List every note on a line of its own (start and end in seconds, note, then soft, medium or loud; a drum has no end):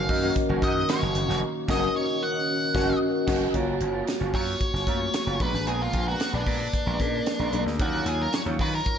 0.00 3.50 D#3 medium
0.00 3.50 A#3 medium
0.00 0.09 C#4 loud
0.00 1.40 C#4 medium
0.00 0.10 F#4 medium
0.00 3.50 F#4 medium
0.00 0.10 A#4 medium
0.00 0.10 D#5 loud
0.00 0.33 F5 loud
0.09 0.29 F#2 loud
0.09 0.19 C#4 medium
0.09 0.19 F#4 medium
0.09 0.19 A#4 medium
0.09 0.19 D#5 medium
0.09 muted clean electric guitar stroke soft
0.09 kick medium
0.09 open hi-hat medium
0.22 0.35 F#3 medium
0.22 0.35 A#3 medium
0.22 1.00 C#4 medium
0.22 0.36 D#4 medium
0.22 0.36 F#4 medium
0.22 1.00 F#4 medium
0.22 1.00 A#4 medium
0.22 1.00 D#5 medium
0.36 muted clean electric guitar stroke soft
0.36 kick medium
0.36 closed hi-hat loud
0.49 0.59 F#1 loud
0.49 0.61 F#3 medium
0.49 0.62 A#3 medium
0.49 0.62 D#4 medium
0.49 0.63 F#4 medium
0.62 0.82 F#2 loud
0.62 0.77 F#3 medium
0.62 0.76 A#3 medium
0.62 0.75 D#4 medium
0.62 0.75 F#4 medium
0.62 0.90 D#5 loud
0.62 kick medium
0.62 closed hi-hat medium
0.76 muted clean electric guitar stroke medium
0.88 1.07 F#3 medium
0.88 1.02 A#3 medium
0.88 1.02 D#4 medium
0.88 1.01 F#4 medium
0.88 1.39 C#5 medium
0.88 snare loud
0.88 closed hi-hat loud
1.02 1.12 F#1 medium
1.02 muted clean electric guitar stroke medium
1.15 1.25 F#1 medium
1.15 muted clean electric guitar stroke soft
1.15 closed hi-hat medium
1.28 1.42 F1 medium
1.28 1.43 F#3 medium
1.28 1.42 A#3 medium
1.28 1.42 D#4 medium
1.28 1.42 F#4 medium
1.28 snare soft
1.42 3.52 C#4 medium
1.68 1.86 F#1 loud
1.68 1.86 F#3 medium
1.68 1.87 A#3 medium
1.68 1.86 C#4 loud
1.68 1.87 D#4 loud
1.68 1.86 F#4 loud
1.68 1.87 F#4 loud
1.68 1.87 A#4 loud
1.68 1.87 D#5 loud
1.68 1.96 D#5 medium
1.68 kick loud
1.68 snare loud
1.68 crash medium
1.96 2.23 C#5 medium
2.23 2.98 F#5 loud
2.74 2.93 F#1 medium
2.74 2.92 F#3 loud
2.74 2.93 A#3 loud
2.74 2.93 C#4 medium
2.74 2.93 D#4 medium
2.74 2.93 F#4 loud
2.74 2.93 A#4 medium
2.74 2.93 D#5 loud
2.74 kick medium
2.74 snare loud
3.27 3.46 F#1 loud
3.27 3.46 F#3 medium
3.27 3.46 A#3 loud
3.27 3.46 C#4 loud
3.27 3.46 D#4 loud
3.27 3.45 F#4 loud
3.27 3.46 F#4 loud
3.27 3.46 A#4 medium
3.27 3.46 D#5 loud
3.27 kick loud
3.27 snare loud
3.27 crash medium
3.53 3.74 F#1 loud
3.53 3.78 F#3 medium
3.53 4.32 A#3 medium
3.53 3.79 C#4 medium
3.53 4.32 F4 medium
3.53 3.79 F4 medium
3.53 4.32 F#4 medium
3.53 3.79 A#4 medium
3.53 4.32 C#5 loud
3.53 kick medium
3.53 closed hi-hat medium
3.80 4.01 F#1 medium
3.80 muted clean electric guitar stroke soft
3.80 closed hi-hat medium
3.93 4.06 F#3 medium
3.93 4.06 C#4 medium
3.93 4.07 F4 medium
3.93 4.07 A#4 medium
4.07 muted clean electric guitar stroke soft
4.07 snare loud
4.07 closed hi-hat medium
4.20 4.31 F#1 medium
4.20 4.32 F#3 medium
4.20 4.33 C#4 medium
4.20 4.34 F4 medium
4.20 4.35 C#5 medium
4.33 4.54 F#2 medium
4.33 4.48 F#3 medium
4.33 4.47 C#4 medium
4.33 4.47 F4 medium
4.33 4.46 A#4 medium
4.33 5.44 C#5 medium
4.33 kick medium
4.33 open hi-hat medium
4.47 muted clean electric guitar stroke soft
4.61 kick medium
4.61 closed hi-hat medium
4.73 4.84 F#1 medium
4.73 muted clean electric guitar stroke soft
4.73 snare soft
4.87 5.07 F#2 medium
4.87 5.06 F#3 medium
4.87 4.93 A3 soft
4.87 5.01 C#4 medium
4.87 5.26 F4 medium
4.87 5.00 F4 medium
4.87 5.26 F#4 medium
4.87 4.99 A#4 medium
4.87 5.26 C#5 medium
4.87 kick medium
4.87 closed hi-hat medium
4.93 5.29 A#3 medium
5.01 muted clean electric guitar stroke soft
5.13 muted clean electric guitar stroke soft
5.13 snare loud
5.13 closed hi-hat loud
5.27 5.37 F#1 medium
5.27 5.40 F#3 medium
5.27 5.40 C#4 medium
5.27 5.41 F4 medium
5.27 5.41 A#4 medium
5.39 5.55 A#1 medium
5.39 5.55 G#3 medium
5.39 6.25 A#3 medium
5.39 5.53 B3 medium
5.39 6.25 D4 medium
5.39 5.53 D4 medium
5.39 6.25 G#4 medium
5.39 5.52 A#4 medium
5.39 6.26 B4 medium
5.39 5.66 B4 medium
5.39 kick loud
5.39 closed hi-hat medium
5.53 5.66 G#1 medium
5.53 muted clean electric guitar stroke soft
5.53 snare soft
5.66 5.87 A#1 medium
5.66 5.91 G#3 medium
5.66 5.91 B3 medium
5.66 5.92 D4 medium
5.66 5.81 G#4 medium
5.66 5.92 A#4 medium
5.66 closed hi-hat medium
5.82 6.08 F4 medium
5.93 6.14 A#1 medium
5.93 muted clean electric guitar stroke soft
5.93 kick medium
5.93 closed hi-hat medium
6.06 6.19 G#3 medium
6.06 6.19 B3 medium
6.06 6.19 D4 medium
6.06 6.34 F#4 medium
6.06 6.20 A#4 medium
6.20 muted clean electric guitar stroke soft
6.20 snare loud
6.20 closed hi-hat medium
6.33 6.43 A#1 medium
6.33 6.45 G#3 medium
6.33 6.46 B3 medium
6.33 6.47 D4 medium
6.33 7.63 D4 medium
6.33 6.48 B4 medium
6.46 6.67 A#2 loud
6.46 6.61 G#3 medium
6.46 6.60 B3 medium
6.46 6.60 D4 medium
6.46 6.59 A#4 medium
6.46 kick medium
6.46 open hi-hat medium
6.60 muted clean electric guitar stroke soft
6.73 muted clean electric guitar stroke soft
6.73 kick medium
6.73 closed hi-hat medium
6.86 6.97 A#1 medium
6.86 6.99 G#3 medium
6.86 6.99 B3 medium
6.86 7.00 D4 medium
6.86 7.00 A#4 medium
7.00 7.20 A#2 medium
7.00 7.39 A#3 medium
7.00 7.06 C#4 medium
7.00 7.39 G#4 medium
7.00 7.39 A#4 medium
7.00 muted clean electric guitar stroke soft
7.00 kick medium
7.00 closed hi-hat medium
7.06 7.42 D4 medium
7.13 muted clean electric guitar stroke soft
7.26 muted clean electric guitar stroke soft
7.26 snare loud
7.26 closed hi-hat medium
7.39 7.50 A#1 medium
7.39 7.51 G#3 medium
7.39 7.52 B3 medium
7.39 7.53 D4 medium
7.39 7.53 A#4 medium
7.52 7.63 B1 medium
7.52 7.67 G#3 medium
7.52 7.72 A#3 medium
7.52 7.66 B3 medium
7.52 7.73 D4 medium
7.52 7.65 D4 medium
7.52 7.73 G#4 medium
7.52 7.65 A#4 medium
7.52 7.73 D5 medium
7.52 closed hi-hat medium
7.66 7.79 D2 medium
7.66 muted clean electric guitar stroke soft
7.66 snare soft
7.79 8.00 D#2 loud
7.79 8.57 F#3 medium
7.79 8.04 F#3 medium
7.79 8.04 C#4 medium
7.79 8.57 D#4 medium
7.79 8.58 F4 medium
7.79 8.05 F4 medium
7.79 8.08 F#4 medium
7.79 8.05 A#4 medium
7.79 8.58 C#5 medium
7.79 kick loud
7.79 closed hi-hat medium
8.06 8.26 D#2 loud
8.06 8.22 G#4 medium
8.06 muted clean electric guitar stroke soft
8.06 closed hi-hat medium
8.20 8.32 F#3 medium
8.20 8.32 C#4 medium
8.20 8.33 F4 medium
8.20 8.33 A#4 medium
8.20 8.34 A#4 medium
8.33 8.42 C#5 medium
8.33 muted clean electric guitar stroke soft
8.33 snare loud
8.33 closed hi-hat medium
8.46 8.56 D#2 medium
8.46 8.58 F#3 medium
8.46 8.59 C#4 medium
8.46 8.59 F4 medium
8.46 8.61 C#5 medium
8.59 8.80 D#3 loud
8.59 8.74 F#3 medium
8.59 8.73 C#4 medium
8.59 8.72 F4 medium
8.59 8.71 A#4 medium
8.59 8.74 B4 medium
8.59 kick medium
8.59 open hi-hat medium
8.73 8.98 A#4 medium
8.73 muted clean electric guitar stroke soft
8.86 muted clean electric guitar stroke soft
8.86 kick medium
8.86 closed hi-hat medium